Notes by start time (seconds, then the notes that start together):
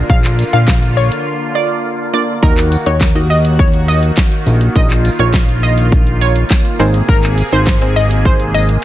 Already playing: D3 A#3 D4 F4 A#4 D5
0.10 A#1 F5, kick, shaker
0.24 clap, closed hi-hat, shaker
0.39 open hi-hat, shaker
0.53 A#1 A#3 D4 F4 A#4 F5, closed hi-hat, shaker
0.68 kick, snare, clap, shaker
0.83 closed hi-hat, shaker
0.97 C#5, open hi-hat, shaker
1.12 closed hi-hat, shaker
1.55 D5
2.13 A#3 D4 F4 A#4 D5
2.42 D#2 D#3 A#3 D#4 F#4 A#4 D#5, kick, shaker
2.57 clap, closed hi-hat, shaker
2.72 open hi-hat, shaker
2.86 D#2 A#3 D#4 F#4 A#4 C#5 D#5, closed hi-hat, shaker
3.01 kick, snare, clap, shaker
3.15 A#3 D#4 F#4 A#4 D#5, closed hi-hat, shaker
3.30 D#5, open hi-hat, shaker
3.45 closed hi-hat, shaker
3.59 C#5, kick, shaker
3.74 closed hi-hat, shaker
3.88 D#5, open hi-hat, shaker
4.03 closed hi-hat, shaker
4.17 kick, snare, clap, shaker
4.32 closed hi-hat, shaker
4.47 A#1, open hi-hat, shaker
4.61 closed hi-hat, shaker
4.75 A#1 A#3 D#4 F4 A#4 D#5, kick, shaker
4.90 clap, closed hi-hat, shaker
5.05 open hi-hat, shaker
5.19 A#1 A#3 D#4 F4 A#4 C#5, closed hi-hat, shaker
5.34 kick, snare, clap, shaker
5.49 closed hi-hat, shaker
5.63 D#5, open hi-hat, shaker
5.78 closed hi-hat, shaker
5.92 kick, shaker
6.07 closed hi-hat, shaker
6.21 C#5, open hi-hat, shaker
6.36 closed hi-hat, shaker
6.50 kick, snare, clap, shaker
6.65 closed hi-hat, shaker
6.79 G#1 C3 C4 D#4 G#4 A#4 C5, open hi-hat, shaker
6.94 closed hi-hat, shaker
7.09 G#1 A#4, kick, shaker
7.23 clap, closed hi-hat, shaker
7.38 open hi-hat, shaker
7.52 G#1 C4 D#4 G#4 A#4 C5, closed hi-hat, shaker
7.67 kick, snare, clap, shaker
7.81 C4 D#4 G#4 A#4 C5, closed hi-hat, shaker
7.96 D#5, open hi-hat, shaker
8.11 closed hi-hat, shaker
8.25 C5, kick, shaker
8.40 closed hi-hat, shaker
8.54 D#5, open hi-hat, shaker
8.69 closed hi-hat, shaker